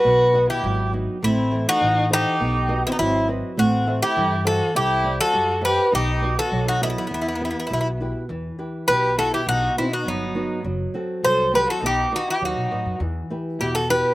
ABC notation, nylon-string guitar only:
X:1
M:2/4
L:1/8
Q:1/4=102
K:Em
V:1 name="Nylon-string guitar"
B,, [B,^df] F, [B,^DF] | A, [E,Ac] E, [EAc] | B, [FB^d] F, [FBd] | A, [Ace] E, [Ace] |
C [G,ce] G [Gce] | B, [FB^d] F, [FBd] | E, [EGB] B,, [EGB] | E, [EGB] B,, [EGB] |
B,, [B,^DF] F, [B,DF] | F, [CFA] F, [CFA] | B, [FB^d] F, [FBd] | E, [EGB] B,, [EGB] |]